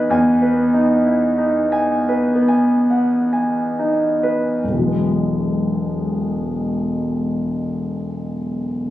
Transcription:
Already playing: B3 D#4 B4 F#5 G#5
0.10 E2 G#5
0.42 B4
0.52 B3
0.74 D#4
1.06 E4
1.38 D#4
1.72 G#5
2.09 B4
2.35 B3
2.48 G#5
2.90 F#5
3.33 G#5
3.79 D#4
4.23 B4
4.63 E1
4.68 B1
4.73 E3
4.78 F#3
4.83 G#3
4.88 B3

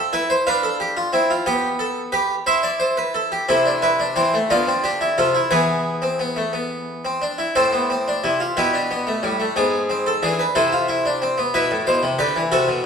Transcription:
Already playing: C4 A4 E5
0.13 E4 B4
0.30 C5
0.47 D4 B4 F5
0.63 A4
0.80 G4
0.97 F4
1.13 C4 E4
1.30 F4
1.46 B3 G4 G5
1.79 A4
2.12 G4 B4
2.46 E4 C5 E5
2.63 D5
2.80 C5
2.97 B4
3.15 A4
3.32 G4
3.49 C3 C4 E4 A4
3.65 D4
3.82 E4 B4
4.00 D4
4.16 E3 C4 C5
4.34 A3
4.50 D3 B3 F4 D5
4.67 C4
4.84 D4 G4
5.01 E4
5.18 C3 F4 A4
5.35 E4
5.51 E3 B3 G#4 B4
6.02 C4
6.19 B3
6.36 A3
6.53 B3
7.05 C4
7.22 D4
7.38 E4
7.55 A2 C4 A4 C5
7.73 B3
7.90 C4
8.08 D4
8.24 C3 E4
8.40 F4
8.57 B2 E4 G4 B4
8.73 D4
8.91 B3
9.07 A3
9.23 A2 G3
9.40 A3
9.56 G#2 B3 G#4
9.90 C4
10.06 A4
10.23 E3 D4 G#4
10.39 B4
10.55 C3 E4 A4 C5
10.73 F4
10.88 E4
11.05 D4
11.22 C4
11.38 B3
11.54 B2 E4 B4
11.71 A2
11.87 B2 C5
12.03 C3
12.19 D3 G4 B4
12.36 E3
12.52 C3 F#4 A4
12.68 B2

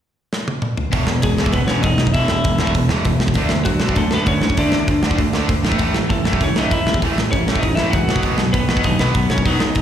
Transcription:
0.33 snare
0.48 high tom
0.62 mid tom
0.77 floor tom
0.91 E1 E2 B2 E3, kick, open hi-hat
1.07 E1 E2 B2, snare
1.22 E1 E2 B2 G#3 G#4, kick, open hi-hat
1.36 C#2 E2 B2 E3, snare
1.46 kick
1.52 G#1 E2 B2 B3 B4, kick, open hi-hat
1.67 E1 E2 B2 E3 C#4 C#5, snare
1.82 E1 E2 B2 D#4 D#5, kick, open hi-hat
1.98 B1 E2 B2, snare
2.07 kick
2.13 E1 E2 B2 E3 E4 E5, kick, open hi-hat
2.28 E1 E2 B2, snare
2.44 E1 E2 B2, kick, open hi-hat
2.58 E1 E2 B2 E3, snare
2.67 kick
2.74 E1 E2 B2, kick, open hi-hat
2.89 E1 E2 B2 E3, snare
3.05 E1 E2 B2, kick, open hi-hat
3.20 E2 B2, snare
3.28 kick
3.34 D2 D3 A3 D4, kick, open hi-hat
3.49 D2 D3 A3, snare
3.65 D2 D3 F#3 A3 F#4, kick, open hi-hat
3.79 B1 D3 A3 D4, snare
3.89 kick
3.95 F#2 D3 A3 A4, kick, open hi-hat
4.11 D2 D3 A3 B3 D4 B4, snare
4.26 D2 D3 A3 C#4 C#5, kick, open hi-hat
4.41 A2 D3 A3, snare
4.50 kick
4.57 D2 D3 A3 D4 D5, kick, open hi-hat
4.72 D2 D3 A3, snare
4.87 D2 D3 A3, kick, open hi-hat
5.03 D2 D3 A3 D4, snare
5.11 kick
5.17 D2 D3 A3, kick, open hi-hat
5.33 D2 D3 A3 D4, snare
5.48 D2 D3 A3, kick, open hi-hat
5.63 A1 A2 E3 A3, snare
5.72 kick
5.79 A1 A2 E3 A3, kick, open hi-hat
5.95 A1 A2 E3, snare
6.10 A1 A2 E3 A3 A4, kick, open hi-hat
6.24 F#1 A2 E3 A3, snare
6.33 kick
6.40 C#2 A2 E3 C#4 C#5, kick, open hi-hat
6.56 A1 A2 E3 A3 D#4 D#5, snare
6.71 A1 A2 E3 E4 E5, kick, open hi-hat
6.86 E2 A2 E3, snare
6.94 kick
7.02 A1 A2 E3 A3, kick, open hi-hat
7.16 A1 A2 E3, snare
7.32 A1 A2 E3 C#4 C#5, kick, open hi-hat
7.47 A1 A2 E3 A3, snare
7.56 D#5, kick
7.63 A1 A2 E3 D#4, kick, open hi-hat
7.75 A1 A2 E3 A3 E4 E5, snare
7.91 C#2 A2 E3 F#4 F#5, kick, open hi-hat
8.07 B1 B2 F#3 B3, snare
8.16 kick
8.22 B1 B2 F#3 B3, kick, open hi-hat
8.38 B1 B2 F#3, snare
8.53 B1 B2 F#3 B3 B4, kick, open hi-hat
8.68 A1 B2 F#3 B3, snare
8.77 kick
8.83 D#2 B2 F#3 D#4 D#5, kick, open hi-hat
8.98 B1 B2 F#3 B3 B4, snare
9.14 B1 B2 F#3, kick, open hi-hat
9.29 F#2 B2 F#3 C#4 C#5, snare
9.38 kick
9.45 B1 B2 F#3 B3 D#4 D#5, kick, open hi-hat
9.60 B1 B2 F#3, snare
9.75 B1 B2 F#3, kick, open hi-hat

